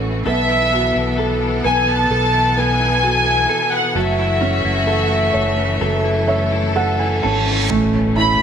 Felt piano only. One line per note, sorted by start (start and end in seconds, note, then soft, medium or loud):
0.00 0.22 F#3 medium
0.00 0.25 C#4 soft
0.00 0.23 E4 soft
0.00 0.24 A4 medium
0.00 0.23 C#5 soft
0.27 1.63 B3 medium
0.73 2.53 F#4 soft
1.19 2.09 A4 soft
1.64 2.56 B3 medium
2.11 3.48 A4 medium
2.58 3.92 B3 medium
3.03 3.93 F#4 medium
3.49 3.94 A4 soft
3.95 7.66 F#3 medium
4.41 6.24 C#4 medium
4.87 5.80 A4 medium
5.33 6.26 C#5 medium
5.81 6.74 A4 medium
6.28 7.66 C#5 medium
6.28 6.73 E5 medium
6.76 7.68 A4 medium
6.76 6.98 F#5 medium
6.99 7.22 G#5 medium
7.23 7.69 C#4 medium
7.23 7.67 A5 medium
7.70 8.42 A3 medium
8.16 8.42 E4 medium